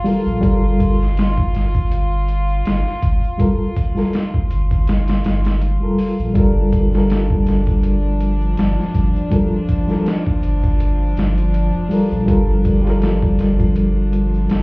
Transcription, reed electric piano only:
0.04 G3 F4 A4
0.09 A#4
0.41 G3 F4 A4
0.45 A#4
3.37 G3 F4 A4
3.42 A#4
3.95 G3 F4 A4
3.99 A#4
5.80 G3 F4 A4
5.85 A#4
6.34 G3 F4 A4
6.38 A#4
6.90 G3 F4
6.95 A4 A#4
9.30 G3 F4 A4
9.34 A#4
9.87 G3 F4 A4
9.91 A#4
11.89 G3 F4 A4
11.94 A#4
12.26 G3 F4 A4
12.30 A#4
12.82 G3 F4
12.87 A4 A#4

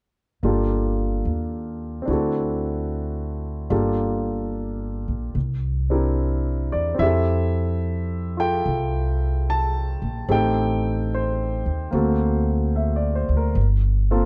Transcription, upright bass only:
0.43 G1
1.25 D#2
2.08 D2
3.70 G1
5.08 A#1
5.35 C2
6.73 E2
6.99 F2
8.66 C2
10.02 A#1
10.29 A1
11.66 D#2
11.93 D2
13.29 D2
13.55 G1

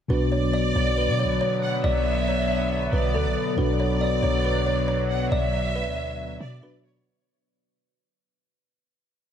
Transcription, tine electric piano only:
0.08 B2 B3 D4 F#4
3.57 B2 B3 D4 F#4
6.62 B2 B3 D4 F#4

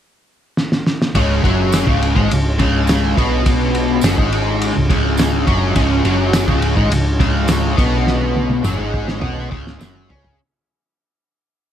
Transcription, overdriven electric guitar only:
1.16 C#2 C#3
1.44 F#2 F#3
1.87 C#2 C#3
2.16 G#2 G#3
2.31 C#2
2.59 C#2 C#3
3.17 B2 B3
4.03 F#2 F#3
4.18 G#2 G#3
4.74 C#2
4.90 C#2 C#3
5.46 F#2 F#3
5.75 C#2 C#3
6.05 F#2 F#3
6.48 C#2 C#3
6.77 G#2 G#3
6.91 C#2
7.19 C#2 C#3
7.77 B2 B3
8.63 F#2 F#3
8.76 G#2 G#3
9.20 B2 B3
9.51 C#2 C#3
9.78 F#2 F#3
10.09 C#3 C#4

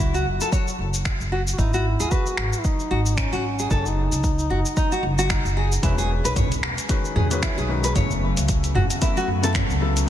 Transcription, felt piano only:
5.82 G#3 C#4 F#4 B4
6.88 D#3 G#3 C#4 F#4 B4
7.30 D#3 G#3 C#4 F#4 B4
7.68 D#3 G#3 C#4 F#4 B4
7.94 C#3 F#3 B3 E4
7.98 A3
9.01 C#3 F#3 A3 B3 E4
9.42 C#3 F#3 A3 B3 E4
9.80 C#3 F#3 B3 E4 A4
10.06 D#3

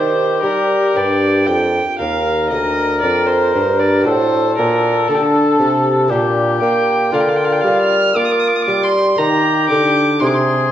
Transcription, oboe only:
Already playing: G4
1.99 A#4
4.07 A4
6.10 G4
7.12 F4
8.17 F4
9.20 G4
10.24 G#4

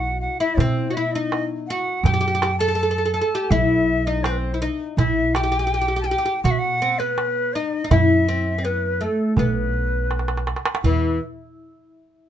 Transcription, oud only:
Already playing: F#4
0.40 E4
0.60 C4
0.90 F#4
0.97 E4
1.15 D#4
1.70 F#4
2.06 G4
2.14 G4
2.21 G4
2.28 G4
2.35 G4
2.43 G4
2.60 A4
2.68 A4
2.75 A4
2.83 A4
2.91 A4
2.98 A4
3.05 A4
3.14 A4
3.21 A4
3.35 G4
3.52 E4
4.07 D#4
4.25 C4
4.54 E4
4.62 D#4
4.98 E4
5.36 G4
5.43 G4
5.52 G4
5.59 G4
5.67 G4
5.74 G4
5.81 G4
5.88 G4
5.96 G4
6.04 G4
6.11 G4
6.18 G4
6.26 G4
6.45 F#4
6.82 C4
7.00 B3
7.55 D#4
7.84 D#4
7.91 E4
8.29 C4
8.58 C4
8.65 B3
9.01 A3
9.39 B3
10.84 E3

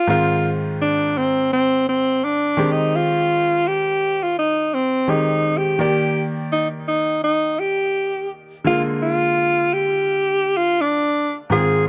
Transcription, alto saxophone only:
0.10 F4
0.82 D4
1.17 C4
1.53 C4
1.89 C4
2.24 D4
2.72 D#4
2.96 F4
3.67 G4
4.23 F4
4.39 D#4
4.74 C4
5.10 D#4
5.57 G4
5.81 G4
6.52 D#4
6.88 D#4
7.24 D#4
7.59 G4
8.67 F4
9.02 F4
9.74 G4
10.57 F4
10.81 D4
11.52 G#4

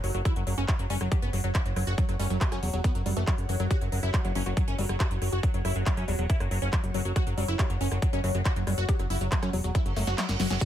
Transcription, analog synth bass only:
0.04 F#1
0.14 F#1
0.36 F#1
0.47 F#1
0.58 F#1
0.79 F#1
0.90 F#1
1.01 F#1
1.22 F#1
1.33 F#1
1.44 F#1
1.66 F#1
1.76 F#1
1.87 F#1
2.09 F#1
2.19 F#1
2.30 F#1
2.52 F#2
2.63 E1
2.73 E1
2.95 F#1
3.06 F#1
3.17 F#1
3.38 F#1
3.49 F#1
3.60 F#1
3.81 F#1
3.92 F#1
4.03 F#1
4.25 F#1
4.35 F#1
4.46 F#1
4.68 F#1
4.79 F#1
4.89 F#1
5.11 F#1
5.22 F#1
5.32 F#1
5.54 F#1
5.65 F#1
5.76 F#1
5.97 F#2
6.08 E1
6.19 E1
6.40 F#1
6.51 F#1
6.62 F#1
6.84 F#1
6.94 F#1
7.05 F#1
7.27 F#1
7.38 F#1
7.48 F#1
7.70 F#1
7.81 F#1
7.91 F#1
8.13 F#1
8.24 F#1
8.35 F#1
8.56 F#1
8.67 F#1
8.78 F#1
8.99 F#1
9.10 F#1
9.21 F#1
9.43 F#2
9.53 E1
9.64 E1
9.86 F#1
9.96 F#1
10.07 F#1
10.29 F#1
10.40 F#1
10.50 F#1

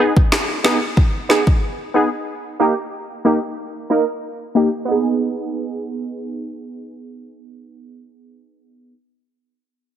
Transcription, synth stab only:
0.00 B3 D#4 G#4
0.64 B3 D#4 G#4
1.29 B3 D#4 G#4
1.94 B3 D#4 G#4
2.59 A#3 D#4 G4
3.25 A#3 D#4 G4
3.90 A#3 D#4 A#4
4.55 A#3 D#4 G4
4.85 B3 D#4
4.91 G#4

